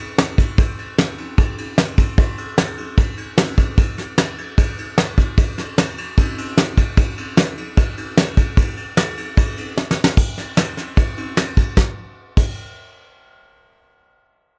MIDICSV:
0, 0, Header, 1, 2, 480
1, 0, Start_track
1, 0, Tempo, 399734
1, 698, Time_signature, 4, 2, 24, 8
1, 17516, End_track
2, 0, Start_track
2, 0, Title_t, "Drums"
2, 221, Note_on_c, 9, 38, 121
2, 221, Note_on_c, 9, 51, 88
2, 341, Note_off_c, 9, 38, 0
2, 341, Note_off_c, 9, 51, 0
2, 459, Note_on_c, 9, 36, 88
2, 460, Note_on_c, 9, 51, 65
2, 579, Note_off_c, 9, 36, 0
2, 580, Note_off_c, 9, 51, 0
2, 699, Note_on_c, 9, 51, 83
2, 700, Note_on_c, 9, 36, 127
2, 819, Note_off_c, 9, 51, 0
2, 820, Note_off_c, 9, 36, 0
2, 941, Note_on_c, 9, 51, 54
2, 1061, Note_off_c, 9, 51, 0
2, 1183, Note_on_c, 9, 38, 116
2, 1183, Note_on_c, 9, 51, 86
2, 1303, Note_off_c, 9, 38, 0
2, 1303, Note_off_c, 9, 51, 0
2, 1418, Note_on_c, 9, 51, 58
2, 1538, Note_off_c, 9, 51, 0
2, 1658, Note_on_c, 9, 51, 92
2, 1659, Note_on_c, 9, 36, 121
2, 1778, Note_off_c, 9, 51, 0
2, 1779, Note_off_c, 9, 36, 0
2, 1899, Note_on_c, 9, 51, 69
2, 2019, Note_off_c, 9, 51, 0
2, 2136, Note_on_c, 9, 38, 115
2, 2136, Note_on_c, 9, 51, 92
2, 2256, Note_off_c, 9, 38, 0
2, 2256, Note_off_c, 9, 51, 0
2, 2378, Note_on_c, 9, 36, 92
2, 2380, Note_on_c, 9, 51, 73
2, 2498, Note_off_c, 9, 36, 0
2, 2500, Note_off_c, 9, 51, 0
2, 2618, Note_on_c, 9, 36, 119
2, 2620, Note_on_c, 9, 51, 88
2, 2738, Note_off_c, 9, 36, 0
2, 2740, Note_off_c, 9, 51, 0
2, 2855, Note_on_c, 9, 51, 67
2, 2975, Note_off_c, 9, 51, 0
2, 3096, Note_on_c, 9, 38, 122
2, 3096, Note_on_c, 9, 51, 92
2, 3216, Note_off_c, 9, 38, 0
2, 3216, Note_off_c, 9, 51, 0
2, 3336, Note_on_c, 9, 51, 62
2, 3456, Note_off_c, 9, 51, 0
2, 3572, Note_on_c, 9, 51, 92
2, 3575, Note_on_c, 9, 36, 125
2, 3692, Note_off_c, 9, 51, 0
2, 3695, Note_off_c, 9, 36, 0
2, 3812, Note_on_c, 9, 51, 69
2, 3932, Note_off_c, 9, 51, 0
2, 4054, Note_on_c, 9, 38, 115
2, 4054, Note_on_c, 9, 51, 90
2, 4174, Note_off_c, 9, 38, 0
2, 4174, Note_off_c, 9, 51, 0
2, 4295, Note_on_c, 9, 51, 70
2, 4296, Note_on_c, 9, 36, 84
2, 4415, Note_off_c, 9, 51, 0
2, 4416, Note_off_c, 9, 36, 0
2, 4537, Note_on_c, 9, 36, 127
2, 4538, Note_on_c, 9, 51, 83
2, 4657, Note_off_c, 9, 36, 0
2, 4658, Note_off_c, 9, 51, 0
2, 4780, Note_on_c, 9, 38, 34
2, 4780, Note_on_c, 9, 51, 58
2, 4900, Note_off_c, 9, 38, 0
2, 4900, Note_off_c, 9, 51, 0
2, 5017, Note_on_c, 9, 38, 115
2, 5017, Note_on_c, 9, 51, 86
2, 5137, Note_off_c, 9, 38, 0
2, 5137, Note_off_c, 9, 51, 0
2, 5260, Note_on_c, 9, 51, 65
2, 5381, Note_off_c, 9, 51, 0
2, 5499, Note_on_c, 9, 36, 119
2, 5503, Note_on_c, 9, 51, 89
2, 5619, Note_off_c, 9, 36, 0
2, 5624, Note_off_c, 9, 51, 0
2, 5745, Note_on_c, 9, 51, 67
2, 5865, Note_off_c, 9, 51, 0
2, 5977, Note_on_c, 9, 38, 118
2, 5977, Note_on_c, 9, 51, 87
2, 6097, Note_off_c, 9, 38, 0
2, 6097, Note_off_c, 9, 51, 0
2, 6217, Note_on_c, 9, 36, 83
2, 6219, Note_on_c, 9, 51, 69
2, 6337, Note_off_c, 9, 36, 0
2, 6339, Note_off_c, 9, 51, 0
2, 6458, Note_on_c, 9, 36, 123
2, 6461, Note_on_c, 9, 51, 89
2, 6578, Note_off_c, 9, 36, 0
2, 6581, Note_off_c, 9, 51, 0
2, 6700, Note_on_c, 9, 38, 32
2, 6700, Note_on_c, 9, 51, 63
2, 6820, Note_off_c, 9, 38, 0
2, 6820, Note_off_c, 9, 51, 0
2, 6940, Note_on_c, 9, 38, 118
2, 6940, Note_on_c, 9, 51, 93
2, 7060, Note_off_c, 9, 38, 0
2, 7060, Note_off_c, 9, 51, 0
2, 7180, Note_on_c, 9, 51, 70
2, 7300, Note_off_c, 9, 51, 0
2, 7418, Note_on_c, 9, 36, 115
2, 7419, Note_on_c, 9, 51, 99
2, 7538, Note_off_c, 9, 36, 0
2, 7539, Note_off_c, 9, 51, 0
2, 7661, Note_on_c, 9, 51, 75
2, 7782, Note_off_c, 9, 51, 0
2, 7896, Note_on_c, 9, 38, 121
2, 7896, Note_on_c, 9, 51, 88
2, 8016, Note_off_c, 9, 38, 0
2, 8016, Note_off_c, 9, 51, 0
2, 8135, Note_on_c, 9, 36, 88
2, 8136, Note_on_c, 9, 51, 73
2, 8255, Note_off_c, 9, 36, 0
2, 8256, Note_off_c, 9, 51, 0
2, 8369, Note_on_c, 9, 51, 89
2, 8374, Note_on_c, 9, 36, 122
2, 8489, Note_off_c, 9, 51, 0
2, 8495, Note_off_c, 9, 36, 0
2, 8614, Note_on_c, 9, 51, 62
2, 8734, Note_off_c, 9, 51, 0
2, 8853, Note_on_c, 9, 38, 121
2, 8853, Note_on_c, 9, 51, 88
2, 8974, Note_off_c, 9, 38, 0
2, 8974, Note_off_c, 9, 51, 0
2, 9094, Note_on_c, 9, 51, 61
2, 9214, Note_off_c, 9, 51, 0
2, 9335, Note_on_c, 9, 36, 121
2, 9337, Note_on_c, 9, 51, 89
2, 9455, Note_off_c, 9, 36, 0
2, 9457, Note_off_c, 9, 51, 0
2, 9577, Note_on_c, 9, 51, 65
2, 9697, Note_off_c, 9, 51, 0
2, 9816, Note_on_c, 9, 38, 114
2, 9816, Note_on_c, 9, 51, 85
2, 9936, Note_off_c, 9, 38, 0
2, 9936, Note_off_c, 9, 51, 0
2, 10054, Note_on_c, 9, 36, 92
2, 10057, Note_on_c, 9, 51, 67
2, 10174, Note_off_c, 9, 36, 0
2, 10177, Note_off_c, 9, 51, 0
2, 10294, Note_on_c, 9, 36, 124
2, 10296, Note_on_c, 9, 51, 88
2, 10414, Note_off_c, 9, 36, 0
2, 10416, Note_off_c, 9, 51, 0
2, 10534, Note_on_c, 9, 51, 58
2, 10654, Note_off_c, 9, 51, 0
2, 10774, Note_on_c, 9, 38, 117
2, 10774, Note_on_c, 9, 51, 91
2, 10894, Note_off_c, 9, 38, 0
2, 10894, Note_off_c, 9, 51, 0
2, 11016, Note_on_c, 9, 51, 66
2, 11136, Note_off_c, 9, 51, 0
2, 11257, Note_on_c, 9, 36, 116
2, 11259, Note_on_c, 9, 51, 93
2, 11377, Note_off_c, 9, 36, 0
2, 11379, Note_off_c, 9, 51, 0
2, 11496, Note_on_c, 9, 51, 73
2, 11617, Note_off_c, 9, 51, 0
2, 11738, Note_on_c, 9, 38, 68
2, 11858, Note_off_c, 9, 38, 0
2, 11897, Note_on_c, 9, 38, 78
2, 12017, Note_off_c, 9, 38, 0
2, 12055, Note_on_c, 9, 38, 113
2, 12175, Note_off_c, 9, 38, 0
2, 12213, Note_on_c, 9, 49, 103
2, 12216, Note_on_c, 9, 36, 110
2, 12333, Note_off_c, 9, 49, 0
2, 12336, Note_off_c, 9, 36, 0
2, 12460, Note_on_c, 9, 38, 33
2, 12460, Note_on_c, 9, 51, 58
2, 12580, Note_off_c, 9, 38, 0
2, 12580, Note_off_c, 9, 51, 0
2, 12694, Note_on_c, 9, 38, 116
2, 12694, Note_on_c, 9, 51, 85
2, 12815, Note_off_c, 9, 38, 0
2, 12815, Note_off_c, 9, 51, 0
2, 12936, Note_on_c, 9, 38, 33
2, 12936, Note_on_c, 9, 51, 59
2, 13056, Note_off_c, 9, 38, 0
2, 13056, Note_off_c, 9, 51, 0
2, 13175, Note_on_c, 9, 51, 91
2, 13176, Note_on_c, 9, 36, 115
2, 13295, Note_off_c, 9, 51, 0
2, 13296, Note_off_c, 9, 36, 0
2, 13417, Note_on_c, 9, 51, 64
2, 13538, Note_off_c, 9, 51, 0
2, 13655, Note_on_c, 9, 38, 111
2, 13655, Note_on_c, 9, 51, 84
2, 13775, Note_off_c, 9, 38, 0
2, 13775, Note_off_c, 9, 51, 0
2, 13895, Note_on_c, 9, 36, 88
2, 13895, Note_on_c, 9, 51, 67
2, 14015, Note_off_c, 9, 36, 0
2, 14015, Note_off_c, 9, 51, 0
2, 14133, Note_on_c, 9, 38, 92
2, 14135, Note_on_c, 9, 36, 109
2, 14253, Note_off_c, 9, 38, 0
2, 14255, Note_off_c, 9, 36, 0
2, 14854, Note_on_c, 9, 49, 84
2, 14856, Note_on_c, 9, 36, 111
2, 14974, Note_off_c, 9, 49, 0
2, 14976, Note_off_c, 9, 36, 0
2, 17516, End_track
0, 0, End_of_file